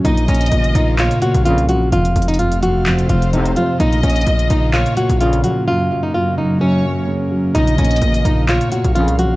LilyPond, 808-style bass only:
\new Staff \with { instrumentName = "808-style bass" } { \clef bass \time 4/4 \key bes \minor \tempo 4 = 128 bes,,8 bes,,8 a,,8 bes,,8. r8 bes,,8 c,16. bes,,16. | f,,8 f,,2 f,,4 r8 | bes,,8 bes,,8 bes,,8 bes,,8. r8 bes,,8. r8 | r1 |
bes,,8 bes,,8 a,,8 bes,,8. r8 bes,,8 c,16. bes,,16. | }